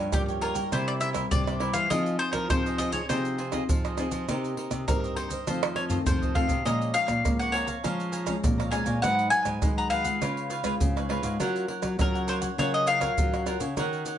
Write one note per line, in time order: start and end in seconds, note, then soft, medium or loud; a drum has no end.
0.00 0.10 G2 medium
0.00 0.26 F4 medium
0.00 0.27 A#4 medium
0.00 0.27 C#5 medium
0.00 0.27 G5 medium
0.12 0.70 G2 medium
0.12 0.53 F3 medium
0.12 0.64 G3 medium
0.12 0.53 A#3 medium
0.12 0.53 C#4 medium
0.12 0.21 G4 medium
0.12 pandeiro medium
0.12 tamborim medium
0.12 maracas medium
0.12 surdo loud
0.28 0.41 A#4 soft
0.28 0.42 C#5 soft
0.28 0.42 G5 medium
0.28 pandeiro soft
0.28 maracas soft
0.41 0.56 F4 medium
0.41 0.72 A#4 medium
0.41 0.56 A#4 medium
0.41 0.55 C#5 medium
0.41 0.54 G5 medium
0.41 pandeiro medium
0.54 1.11 G3 medium
0.54 1.11 A#3 medium
0.54 1.11 E4 medium
0.54 0.71 A#4 soft
0.54 0.71 C#5 soft
0.54 0.70 G5 soft
0.54 pandeiro medium
0.54 maracas medium
0.54 surdo soft
0.72 1.29 C3 medium
0.72 1.23 C3 medium
0.72 0.99 E4 medium
0.72 1.00 A#4 medium
0.72 0.87 C5 medium
0.72 1.01 C5 medium
0.72 1.01 E5 medium
0.72 pandeiro medium
0.72 tamborim medium
0.72 maracas medium
0.72 surdo medium
0.88 0.93 D5 medium
0.88 pandeiro soft
0.88 maracas soft
1.01 1.13 E4 medium
1.01 1.14 A#4 soft
1.01 1.14 C5 medium
1.01 1.09 E5 medium
1.01 1.15 E5 medium
1.01 pandeiro medium
1.01 maracas medium
1.14 1.55 G3 medium
1.14 1.55 A#3 medium
1.14 1.25 E4 medium
1.14 1.56 E4 medium
1.14 1.25 A#4 medium
1.14 1.25 C5 medium
1.14 1.25 E5 medium
1.14 pandeiro medium
1.14 tamborim medium
1.14 maracas medium
1.14 surdo soft
1.31 1.88 G2 medium
1.31 1.70 C3 medium
1.31 1.73 D5 loud
1.31 pandeiro medium
1.31 maracas medium
1.31 surdo loud
1.47 1.60 A#4 soft
1.47 1.60 C5 soft
1.47 1.61 E5 soft
1.47 pandeiro soft
1.47 tamborim medium
1.47 maracas soft
1.59 1.85 G3 medium
1.59 1.86 A#3 medium
1.59 1.74 E4 medium
1.59 1.86 E4 medium
1.59 1.74 A#4 medium
1.59 1.73 C5 medium
1.59 1.72 E5 medium
1.59 pandeiro medium
1.59 tamborim medium
1.73 1.88 E3 medium
1.73 1.90 A#4 soft
1.73 1.89 C5 soft
1.73 1.89 E5 medium
1.73 1.89 F5 loud
1.73 pandeiro medium
1.73 maracas medium
1.73 surdo soft
1.90 2.47 F3 medium
1.90 2.16 F3 loud
1.90 2.45 C4 medium
1.90 2.46 D#4 medium
1.90 2.18 F4 medium
1.90 2.46 G#4 medium
1.90 2.20 G#4 medium
1.90 2.20 C5 medium
1.90 2.19 D#5 loud
1.90 2.21 D#5 medium
1.90 pandeiro medium
1.90 tamborim medium
1.90 maracas medium
1.90 surdo medium
2.06 pandeiro soft
2.06 maracas soft
2.19 2.64 F4 medium
2.19 2.64 G#4 medium
2.19 2.32 C5 loud
2.19 2.64 C5 medium
2.19 2.65 D#5 medium
2.19 pandeiro medium
2.33 2.47 F3 medium
2.33 2.50 A#4 medium
2.33 pandeiro medium
2.33 tamborim medium
2.33 maracas medium
2.33 surdo soft
2.50 3.07 C3 medium
2.50 3.01 F3 medium
2.50 2.90 C4 medium
2.50 2.90 D#4 medium
2.50 2.90 G#4 medium
2.50 2.78 C5 loud
2.50 pandeiro medium
2.50 tamborim medium
2.50 maracas medium
2.50 surdo loud
2.66 2.78 G#4 soft
2.66 2.79 C5 soft
2.66 2.79 D#5 medium
2.66 pandeiro soft
2.66 maracas soft
2.78 2.93 F4 medium
2.78 2.93 G#4 medium
2.78 2.92 C5 medium
2.78 2.92 D#5 medium
2.78 2.91 D#5 medium
2.78 pandeiro medium
2.78 maracas medium
2.78 surdo soft
2.92 3.04 C4 medium
2.92 3.04 D#4 medium
2.92 3.04 G#4 medium
2.92 3.08 G#4 soft
2.92 3.08 C5 soft
2.92 3.09 C#5 medium
2.92 3.07 D#5 medium
2.92 pandeiro medium
2.92 maracas medium
2.92 surdo soft
3.09 3.60 C3 medium
3.09 3.66 F3 medium
3.09 3.38 C4 medium
3.09 3.38 D#4 medium
3.09 3.37 F4 medium
3.09 3.38 G#4 medium
3.09 3.95 C5 medium
3.09 3.39 C5 medium
3.09 3.39 D#5 medium
3.09 pandeiro medium
3.09 tamborim medium
3.09 maracas medium
3.09 surdo medium
3.25 pandeiro soft
3.25 maracas soft
3.38 3.51 F4 medium
3.38 3.52 G#4 medium
3.38 3.52 C5 medium
3.38 3.52 D#5 medium
3.38 pandeiro medium
3.52 3.93 C4 medium
3.52 3.93 D#4 medium
3.52 3.62 F4 medium
3.52 3.93 G#4 medium
3.52 3.63 G#4 medium
3.52 3.63 C5 medium
3.52 3.63 D#5 medium
3.52 pandeiro medium
3.52 tamborim medium
3.52 maracas medium
3.52 surdo soft
3.69 4.26 C3 medium
3.69 4.07 F3 medium
3.69 pandeiro medium
3.69 maracas medium
3.69 surdo loud
3.85 3.98 G#4 soft
3.85 3.98 C5 soft
3.85 3.98 D#5 soft
3.85 pandeiro soft
3.85 tamborim medium
3.85 maracas soft
3.98 4.23 C4 medium
3.98 4.24 D#4 medium
3.98 4.12 F4 medium
3.98 4.24 G#4 medium
3.98 4.13 G#4 medium
3.98 4.12 C5 medium
3.98 4.11 D#5 medium
3.98 pandeiro medium
3.98 tamborim medium
3.98 maracas medium
4.11 4.25 F3 medium
4.11 4.27 G#4 soft
4.11 4.27 C5 soft
4.11 4.26 D#5 medium
4.11 pandeiro medium
4.11 maracas medium
4.11 surdo soft
4.29 4.54 C3 loud
4.29 4.85 C3 medium
4.29 4.83 A#3 medium
4.29 4.56 D#4 medium
4.29 4.84 D#4 medium
4.29 4.84 G4 medium
4.29 4.57 A#4 medium
4.29 4.57 C5 medium
4.29 4.58 D#5 medium
4.29 pandeiro medium
4.29 tamborim medium
4.29 maracas medium
4.29 surdo medium
4.44 pandeiro soft
4.44 maracas soft
4.57 5.01 D#4 medium
4.57 5.01 A#4 soft
4.57 5.02 C5 medium
4.57 5.02 D#5 medium
4.57 pandeiro medium
4.71 4.84 C3 medium
4.71 pandeiro medium
4.71 tamborim medium
4.71 maracas medium
4.71 surdo soft
4.88 5.45 G2 medium
4.88 5.27 A#3 medium
4.88 5.38 C4 medium
4.88 5.27 D#4 soft
4.88 5.27 G4 medium
4.88 5.16 A#4 medium
4.88 pandeiro medium
4.88 tamborim medium
4.88 maracas medium
4.88 surdo loud
5.04 5.16 A#4 soft
5.04 5.17 C5 soft
5.04 5.17 D#5 medium
5.04 pandeiro soft
5.04 maracas soft
5.16 5.31 D#4 medium
5.16 5.31 A#4 medium
5.16 5.75 C5 medium
5.16 5.30 C5 medium
5.16 5.29 D#5 medium
5.16 pandeiro medium
5.30 5.46 A#4 soft
5.30 5.46 C5 soft
5.30 5.45 D#5 soft
5.30 pandeiro medium
5.30 maracas medium
5.30 surdo soft
5.47 6.04 F2 medium
5.47 5.75 D#3 medium
5.47 5.98 F3 medium
5.47 5.75 A3 medium
5.47 5.76 C4 medium
5.47 5.75 F4 medium
5.47 5.76 A4 medium
5.47 5.76 C5 medium
5.47 5.77 D#5 medium
5.47 pandeiro medium
5.47 tamborim medium
5.47 maracas medium
5.47 surdo medium
5.63 pandeiro soft
5.63 tamborim loud
5.63 maracas soft
5.76 5.89 F4 soft
5.76 5.89 A4 soft
5.76 5.89 C5 medium
5.76 5.84 C#5 medium
5.76 5.90 D#5 medium
5.76 pandeiro medium
5.76 tamborim medium
5.89 6.30 D#3 medium
5.89 6.31 A3 medium
5.89 6.31 C4 medium
5.89 6.00 F4 medium
5.89 6.00 A4 medium
5.89 6.00 C5 medium
5.89 6.00 D#5 medium
5.89 surdo medium
5.89 pandeiro medium
5.89 maracas medium
5.89 surdo soft
6.06 6.63 C3 medium
6.06 6.44 F3 medium
6.06 6.34 C5 medium
6.06 surdo medium
6.06 pandeiro medium
6.06 maracas medium
6.06 surdo loud
6.22 6.34 A4 soft
6.22 6.35 C5 soft
6.22 6.35 D#5 soft
6.22 pandeiro soft
6.22 maracas soft
6.22 surdo medium
6.35 6.53 D#3 medium
6.35 6.53 A3 medium
6.35 6.53 C4 medium
6.35 6.49 F4 medium
6.35 6.49 A4 medium
6.35 6.49 C5 medium
6.35 6.47 D#5 medium
6.35 6.63 F5 medium
6.35 pandeiro medium
6.35 surdo medium
6.49 6.62 C3 medium
6.49 6.64 A4 soft
6.49 6.64 C5 soft
6.49 6.63 D#5 medium
6.49 pandeiro medium
6.49 maracas medium
6.49 surdo medium
6.65 6.91 A#2 medium
6.65 7.22 A#2 medium
6.65 7.21 F3 medium
6.65 7.21 G#3 medium
6.65 7.21 C#4 medium
6.65 6.93 G#4 medium
6.65 6.93 C#5 medium
6.65 6.96 D#5 medium
6.65 6.94 F5 medium
6.65 6.95 A#5 medium
6.65 pandeiro medium
6.65 tamborim medium
6.65 maracas medium
6.65 surdo medium
6.82 pandeiro soft
6.82 maracas soft
6.94 7.38 G#4 medium
6.94 7.38 C#5 medium
6.94 7.39 F5 loud
6.94 7.39 F5 soft
6.94 7.39 A#5 medium
6.94 pandeiro medium
6.94 maracas medium
7.08 7.21 A#2 medium
7.08 pandeiro medium
7.08 tamborim medium
7.08 maracas medium
7.08 surdo soft
7.25 7.82 F2 medium
7.25 7.64 F3 medium
7.25 7.64 G#3 medium
7.25 7.75 A#3 medium
7.25 7.64 C#4 medium
7.25 pandeiro medium
7.25 tamborim medium
7.25 maracas medium
7.25 surdo medium
7.39 7.53 C#5 soft
7.39 7.53 F5 soft
7.39 7.55 F#5 medium
7.39 7.54 A#5 soft
7.39 pandeiro soft
7.39 maracas soft
7.52 7.68 G#4 medium
7.52 8.76 C#5 medium
7.52 7.67 C#5 medium
7.52 7.66 F5 medium
7.52 7.65 A#5 medium
7.52 pandeiro medium
7.66 7.83 C#5 soft
7.66 7.82 F5 soft
7.66 7.82 A#5 soft
7.66 pandeiro medium
7.66 maracas medium
7.66 surdo soft
7.84 8.41 A#2 medium
7.84 8.35 F3 loud
7.84 8.24 F3 medium
7.84 8.25 G#3 medium
7.84 8.25 C#4 medium
7.84 8.11 G#4 medium
7.84 8.11 C#5 medium
7.84 8.12 F5 medium
7.84 8.12 A#5 medium
7.84 pandeiro medium
7.84 tamborim medium
7.84 maracas medium
7.84 surdo medium
8.00 pandeiro soft
8.00 maracas soft
8.12 8.25 G#4 medium
8.12 8.25 C#5 medium
8.12 8.26 F5 medium
8.12 8.26 A#5 medium
8.12 pandeiro medium
8.12 maracas medium
8.26 8.68 F3 medium
8.26 8.68 G#3 medium
8.26 8.68 C#4 medium
8.26 8.36 G#4 medium
8.26 8.37 C#5 medium
8.26 8.37 F5 medium
8.26 8.37 A#5 medium
8.26 pandeiro medium
8.26 tamborim medium
8.26 maracas medium
8.26 surdo soft
8.43 9.00 F2 medium
8.43 8.81 A#2 medium
8.43 pandeiro medium
8.43 maracas medium
8.43 surdo loud
8.58 8.70 C#5 soft
8.58 8.71 F5 soft
8.58 8.71 A#5 medium
8.58 pandeiro soft
8.58 tamborim medium
8.58 maracas soft
8.71 8.98 F3 medium
8.71 8.98 G#3 medium
8.71 8.98 C#4 medium
8.71 8.86 G#4 medium
8.71 8.85 C#5 medium
8.71 8.84 F5 medium
8.71 9.00 G#5 medium
8.71 8.83 A#5 medium
8.71 pandeiro medium
8.71 tamborim medium
8.71 maracas medium
8.85 9.00 A#2 medium
8.85 9.01 C#5 soft
8.85 9.01 F5 soft
8.85 9.00 A#5 soft
8.85 pandeiro medium
8.85 maracas medium
8.85 surdo soft
9.02 9.28 G#2 medium
9.02 9.60 G#2 medium
9.02 9.58 F#3 medium
9.02 9.58 B3 medium
9.02 9.58 D#4 medium
9.02 9.29 F#4 medium
9.02 9.30 G#4 medium
9.02 9.31 B4 medium
9.02 9.30 F#5 loud
9.02 9.31 F#5 medium
9.02 pandeiro medium
9.02 tamborim medium
9.02 maracas medium
9.02 surdo medium
9.19 pandeiro soft
9.19 maracas soft
9.30 9.75 F#4 medium
9.30 9.75 G#4 medium
9.30 9.76 B4 medium
9.30 9.76 F#5 medium
9.30 9.77 G#5 loud
9.30 pandeiro medium
9.30 maracas medium
9.45 9.59 G#2 medium
9.45 pandeiro medium
9.45 tamborim medium
9.45 maracas medium
9.45 surdo soft
9.62 10.19 D#3 medium
9.62 10.02 F#3 medium
9.62 10.13 G#3 medium
9.62 10.03 B3 medium
9.62 10.03 D#4 medium
9.62 pandeiro medium
9.62 tamborim medium
9.62 maracas medium
9.62 surdo loud
9.77 9.90 G#4 soft
9.77 9.91 B4 soft
9.77 9.91 F#5 medium
9.77 9.90 A#5 medium
9.77 pandeiro soft
9.77 maracas soft
9.90 10.05 F#4 medium
9.90 10.05 G#4 medium
9.90 10.04 B4 medium
9.90 11.06 F5 medium
9.90 10.03 F#5 medium
9.90 pandeiro medium
9.90 surdo soft
10.04 10.60 G#3 medium
10.04 10.61 B3 medium
10.04 10.61 F4 medium
10.04 10.20 G#4 soft
10.04 10.20 B4 medium
10.04 10.19 F#5 medium
10.04 pandeiro medium
10.04 maracas medium
10.04 surdo soft
10.21 10.72 C#3 medium
10.21 10.78 C#3 medium
10.21 10.49 F4 medium
10.21 10.49 B4 medium
10.21 10.50 C#5 medium
10.21 10.51 F5 medium
10.21 pandeiro medium
10.21 tamborim medium
10.21 maracas medium
10.21 surdo medium
10.37 pandeiro soft
10.37 maracas soft
10.50 10.62 F4 soft
10.50 10.63 B4 medium
10.50 10.63 C#5 soft
10.50 10.63 F5 medium
10.50 pandeiro medium
10.50 maracas medium
10.64 11.05 G#3 medium
10.64 11.05 B3 medium
10.64 10.74 F4 medium
10.64 11.05 F4 medium
10.64 10.74 B4 medium
10.64 10.74 C#5 medium
10.64 10.74 F5 medium
10.64 pandeiro medium
10.64 tamborim medium
10.64 maracas medium
10.64 surdo soft
10.80 11.37 G#2 medium
10.80 11.18 C#3 medium
10.80 pandeiro medium
10.80 maracas medium
10.80 surdo loud
10.96 11.09 B4 soft
10.96 11.09 C#5 soft
10.96 11.10 F5 soft
10.96 pandeiro soft
10.96 tamborim medium
10.96 maracas soft
11.09 11.35 G#3 medium
11.09 11.35 B3 medium
11.09 11.23 F4 medium
11.09 11.35 F4 medium
11.09 11.24 B4 medium
11.09 11.22 C#5 medium
11.09 11.22 F5 medium
11.09 pandeiro medium
11.09 tamborim medium
11.23 11.37 G#2 medium
11.23 11.39 B4 soft
11.23 11.38 C#5 soft
11.23 11.38 F5 medium
11.23 pandeiro medium
11.23 maracas medium
11.23 surdo soft
11.40 11.65 F#3 loud
11.40 11.97 F#3 medium
11.40 11.95 C#4 medium
11.40 11.68 F4 medium
11.40 11.95 F4 medium
11.40 11.67 A#4 medium
11.40 11.96 A#4 medium
11.40 11.68 C#5 medium
11.40 11.69 F#5 medium
11.40 pandeiro medium
11.40 tamborim medium
11.40 maracas medium
11.40 surdo medium
11.56 pandeiro soft
11.56 maracas soft
11.68 12.13 A#4 medium
11.68 12.13 C#5 medium
11.68 12.13 F#5 medium
11.68 pandeiro medium
11.82 11.96 F#3 medium
11.82 pandeiro medium
11.82 tamborim medium
11.82 maracas medium
11.82 surdo soft
11.99 12.56 C#3 medium
11.99 12.50 F#3 medium
11.99 12.54 C#4 medium
11.99 12.54 F4 medium
11.99 12.55 A#4 medium
11.99 12.28 A#4 medium
11.99 pandeiro medium
11.99 tamborim medium
11.99 maracas medium
11.99 surdo loud
12.15 12.27 A#4 soft
12.15 12.28 C#5 soft
12.15 12.28 F#5 soft
12.15 pandeiro soft
12.15 maracas soft
12.28 12.42 F4 medium
12.28 12.42 A#4 medium
12.28 12.37 C5 medium
12.28 12.41 C#5 medium
12.28 12.40 F#5 medium
12.28 pandeiro medium
12.28 maracas medium
12.41 12.57 A#4 soft
12.41 12.57 C#5 soft
12.41 12.56 F#5 soft
12.41 pandeiro medium
12.41 maracas medium
12.41 surdo soft
12.58 13.09 C#3 medium
12.58 13.15 F#3 medium
12.58 12.99 C#4 medium
12.58 12.86 F4 medium
12.58 12.99 F4 medium
12.58 12.86 A#4 medium
12.58 12.99 A#4 medium
12.58 12.74 C#5 loud
12.58 12.87 C#5 medium
12.58 12.88 F#5 medium
12.58 pandeiro medium
12.58 tamborim medium
12.58 maracas medium
12.58 surdo medium
12.74 12.88 D#5 loud
12.74 pandeiro soft
12.74 maracas soft
12.87 12.99 F4 soft
12.87 13.00 A#4 medium
12.87 13.00 C#5 medium
12.87 13.43 F5 loud
12.87 13.01 F#5 medium
12.87 pandeiro medium
12.87 maracas medium
13.01 13.42 C#4 medium
13.01 13.11 F4 medium
13.01 13.42 F4 medium
13.01 13.11 A#4 medium
13.01 13.42 A#4 medium
13.01 13.11 C#5 medium
13.01 13.12 F#5 medium
13.01 pandeiro medium
13.01 tamborim medium
13.01 maracas medium
13.01 surdo soft
13.18 13.75 C#3 medium
13.18 13.56 F#3 medium
13.18 pandeiro medium
13.18 maracas medium
13.18 surdo loud
13.34 13.45 A#4 soft
13.34 13.46 C#5 soft
13.34 13.47 F#5 soft
13.34 pandeiro soft
13.34 tamborim medium
13.34 maracas soft
13.46 13.65 C#4 medium
13.46 13.61 F4 medium
13.46 13.65 F4 medium
13.46 13.61 A#4 medium
13.46 13.65 A#4 medium
13.46 13.60 C#5 medium
13.46 13.59 F#5 medium
13.46 pandeiro medium
13.46 tamborim medium
13.46 maracas medium
13.60 13.74 C#3 medium
13.60 13.76 A#4 soft
13.60 13.76 C#5 medium
13.60 13.75 F#5 soft
13.60 pandeiro medium
13.60 maracas medium
13.60 surdo soft
13.77 14.03 D#3 loud
13.77 14.18 D#3 medium
13.77 14.18 C#4 medium
13.77 14.04 D#4 medium
13.77 14.18 F#4 medium
13.77 14.05 A#4 medium
13.77 14.18 A#4 medium
13.77 14.06 C#5 medium
13.77 14.06 F#5 medium
13.77 pandeiro medium
13.77 tamborim medium
13.77 maracas medium
13.77 surdo medium
13.93 pandeiro soft
13.93 maracas soft
14.05 14.18 D#4 medium
14.05 14.18 A#4 medium
14.05 14.18 C#5 medium
14.05 14.18 F#5 medium
14.05 pandeiro medium
14.05 maracas medium